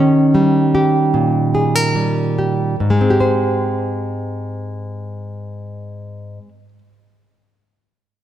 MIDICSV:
0, 0, Header, 1, 2, 480
1, 0, Start_track
1, 0, Key_signature, -4, "major"
1, 0, Tempo, 770218
1, 703, Tempo, 814111
1, 1183, Tempo, 865801
1, 1657, Time_signature, 4, 2, 24, 8
1, 4672, End_track
2, 0, Start_track
2, 0, Title_t, "Nylon-string guitar"
2, 0, Program_c, 0, 24
2, 0, Note_on_c, 0, 51, 47
2, 0, Note_on_c, 0, 61, 36
2, 0, Note_on_c, 0, 67, 37
2, 215, Note_on_c, 0, 55, 37
2, 458, Note_off_c, 0, 67, 0
2, 465, Note_on_c, 0, 67, 36
2, 710, Note_on_c, 0, 46, 40
2, 950, Note_on_c, 0, 68, 33
2, 1073, Note_off_c, 0, 68, 0
2, 1073, Note_on_c, 0, 70, 29
2, 1182, Note_off_c, 0, 55, 0
2, 1190, Note_on_c, 0, 55, 37
2, 1421, Note_off_c, 0, 67, 0
2, 1429, Note_on_c, 0, 67, 34
2, 1627, Note_off_c, 0, 51, 0
2, 1631, Note_off_c, 0, 46, 0
2, 1631, Note_off_c, 0, 55, 0
2, 1632, Note_off_c, 0, 61, 0
2, 1633, Note_off_c, 0, 67, 0
2, 1660, Note_on_c, 0, 44, 35
2, 1662, Note_off_c, 0, 70, 0
2, 1716, Note_on_c, 0, 56, 35
2, 1775, Note_on_c, 0, 60, 33
2, 1827, Note_on_c, 0, 67, 33
2, 1883, Note_on_c, 0, 72, 32
2, 3645, Note_off_c, 0, 44, 0
2, 3700, Note_off_c, 0, 56, 0
2, 3759, Note_off_c, 0, 60, 0
2, 3812, Note_off_c, 0, 67, 0
2, 3867, Note_off_c, 0, 72, 0
2, 4672, End_track
0, 0, End_of_file